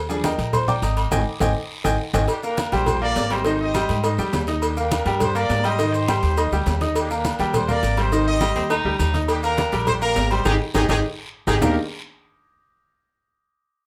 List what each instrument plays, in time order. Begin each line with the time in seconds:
Already playing: upright bass D#2
0.09 grand piano F3 G3 D4 G#4 G#5, high conga, maracas
0.24 grand piano A#4 D#5 G5 A#5, cowbell, high conga, low agogo, short guiro, maracas
0.38 upright bass A#1, cowbell, short guiro, maracas
0.53 grand piano C5 C6, cowbell, high conga, low conga, low agogo, long guiro, maracas
0.68 grand piano D5 G5 A#5 D6, high conga, low conga, low agogo, maracas
0.82 upright bass G#1, grand piano D#5 G5 A#5 D#6, cowbell, short guiro, maracas
0.97 cowbell, high conga, low agogo, short guiro, maracas
1.11 upright bass G#1, grand piano D#5 G5 G#5, cowbell, high conga, high timbale, long guiro, maracas
1.40 upright bass G#1, grand piano D#5 G5 G#5, cowbell, high conga, high timbale, long guiro, maracas
1.84 upright bass G#1, grand piano D#5 G5 G#5, cowbell, high conga, high timbale, maracas
2.14 upright bass G#1, grand piano D#5 G5 G#5, cowbell, high conga, high timbale, long guiro, maracas
2.28 trumpet section A#3 D4 G4, cowbell, high conga, low agogo, long guiro, maracas
2.43 grand piano A#3 A#4 A#5, trumpet section D4 G4 A#4, high conga, maracas
2.57 cowbell, high conga, low agogo, short guiro, maracas
2.72 upright bass A#1, grand piano G3 G4 G5, trumpet section G4 C5, cowbell, short guiro, maracas
2.86 cowbell, high conga, low conga, low agogo, long guiro, maracas
3.02 grand piano A#3 A#4 A#5, trumpet section G4 A#4 D5, high conga, low agogo
3.16 upright bass G#1, cowbell, high conga, low timbale, short guiro, maracas
3.30 grand piano G3 G4 G5, trumpet section D#4 G4 C5, cowbell, high conga, low agogo, short guiro, maracas
3.44 grand piano D#3 D#4 D#5, cowbell, high conga, low agogo, long guiro, maracas
3.60 trumpet section G4 C5 D#5, high conga
3.74 grand piano G3 G4 G5, cowbell, high conga, low agogo, short guiro, maracas
3.89 upright bass G#2, cowbell, high conga, short guiro, maracas
4.04 grand piano D#4 D#5 D#6, cowbell, high conga, low agogo, long guiro, maracas
4.18 upright bass F2, grand piano G3 G4 G5, high conga, maracas
4.33 upright bass D#2, cowbell, high conga, low timbale, low agogo, short guiro, maracas
4.47 grand piano D#4 D#5 D#6, cowbell, short guiro, maracas
4.62 trumpet section A#3 D4 G4, cowbell, high conga, low agogo, long guiro, maracas
4.77 grand piano A#3 A#4 A#5, trumpet section D4 G4 A#4, high conga, maracas
4.91 cowbell, high conga, low agogo, short guiro, maracas
5.06 upright bass G2, grand piano G3 G4 G5, cowbell, short guiro, maracas
5.20 trumpet section G4 C5, cowbell, high conga, low conga, low agogo, long guiro, maracas
5.35 grand piano A#3 A#4 A#5, trumpet section G4 A#4 D5, high conga, low agogo, maracas
5.49 upright bass G#2, cowbell, high conga, low timbale, short guiro, maracas
5.64 grand piano G3 G4 G5, trumpet section G4 C5 D#5, cowbell, high conga, low agogo, short guiro, maracas
5.79 grand piano D#3 D#4 D#5, cowbell, high conga, low agogo, long guiro, maracas
5.93 trumpet section D#4 G4 C5, high conga, maracas
6.08 grand piano G3 G4 G5, cowbell, high conga, low agogo, short guiro, maracas
6.23 upright bass D#2, cowbell, high conga, short guiro, maracas
6.37 grand piano D#4 D#5 D#6, cowbell, high conga, low agogo, long guiro, maracas
6.52 upright bass D2, grand piano G3 G4 G5, high conga, maracas
6.66 upright bass D#2, cowbell, high conga, low timbale, low agogo, short guiro, maracas
6.81 grand piano D#4 D#5 D#6, cowbell, high conga, short guiro, maracas
6.95 trumpet section A#3 D4 G4, cowbell, high conga, low agogo, long guiro, maracas
7.10 grand piano A#3 A#4 A#5, trumpet section D4 G4 A#4, high conga, maracas
7.24 cowbell, high conga, low agogo, short guiro, maracas
7.39 upright bass D#2, grand piano G3 G4 G5, cowbell, short guiro, maracas
7.54 trumpet section G4 C5, cowbell, high conga, low conga, low agogo, long guiro, maracas
7.68 grand piano A#3 A#4 A#5, trumpet section G4 A#4 D5, high conga, low conga, low agogo, maracas
7.83 upright bass G#1, cowbell, high conga, short guiro, maracas
7.97 grand piano G3 G4 G5, trumpet section D#4 G4 C5, cowbell, high conga, low agogo, short guiro, maracas
8.12 grand piano D#3 D#4 D#5, cowbell, high conga, low agogo, long guiro, maracas
8.26 trumpet section G4 C5 D#5, high conga
8.41 grand piano G3 G4 G5, cowbell, high conga, low agogo, short guiro, maracas
8.56 upright bass D#2, baritone saxophone C4, cowbell, high conga, short guiro, maracas
8.70 baritone saxophone D#4, grand piano D#4 D#5 D#6, cowbell, high conga, low agogo, maracas
8.85 upright bass D2, grand piano G3 G4 G5, high conga
8.99 upright bass D#2, baritone saxophone D#4, cowbell, high conga, low agogo, short guiro, maracas
9.14 grand piano D#4 D#5 D#6, cowbell, high conga, short guiro, maracas
9.28 trumpet section A#3 D4 G4, cowbell, high conga, low agogo, long guiro, maracas
9.43 grand piano A#3 A#4 A#5, trumpet section D4 G4 A#4, high conga, maracas
9.57 cowbell, high conga, low agogo, short guiro, maracas
9.72 upright bass A#1, grand piano G3 G4 G5, cowbell, short guiro, maracas
9.87 trumpet section G4 C5, cowbell, high conga, low conga, low agogo, long guiro, maracas
10.02 grand piano A#3 A#4 A#5, trumpet section D4 G4 A#4, high conga, low agogo, maracas
10.16 upright bass G#1, cowbell, high conga, low timbale, short guiro, maracas
10.31 grand piano G3 G4 G5, trumpet section D#4 G4 C5, cowbell, high conga, low agogo, short guiro, maracas
10.45 upright bass G#1, trumpet section D#4 G4 G#4, baritone saxophone D#4, grand piano D#4 G4 G#4, cowbell, high conga, high timbale, long guiro, maracas
10.74 upright bass G#1, baritone saxophone D#4, grand piano D#4 G4 G#4, trumpet section D#4 G4 G#4, cowbell, high conga, high timbale, long guiro, maracas
10.89 upright bass G#1, trumpet section D#4 G4 G#4, grand piano D#4 G4 G#4, baritone saxophone D#4, cowbell, high conga, high timbale, long guiro, maracas
11.47 upright bass G#1, grand piano D#4 G4 G#4, baritone saxophone D#4, trumpet section D#4 G4 G#4, cowbell, high conga, high timbale, long guiro, maracas
11.61 upright bass D#2, grand piano D#3 A#3 D4 D#4 G4 A#4, baritone saxophone G4, trumpet section A#4, low bongo, low conga, low timbale, long guiro, maracas